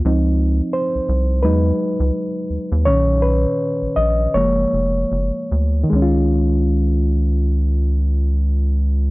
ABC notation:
X:1
M:4/4
L:1/16
Q:"Swing 16ths" 1/4=79
K:Db
V:1 name="Reed electric piano"
z4 c4 =B8 | d2 _c4 e2 d6 z2 | [E,A,DF]16 |]
V:2 name="Reed electric piano" clef=bass
[F,CE]6 z2 [^F,^G,^D]2 z6 | [B,,E,D]8 [F,A,B,]2 z6 | z16 |]
V:3 name="Analog synth bass" clef=bass
D,,4 z C,, C,,2 =E,,2 z D,, z2 ^D,, D,, | _C,,4 z B,,, B,,,2 G,,,2 F,,,2 G,,, z =D,,2 | D,,16 |]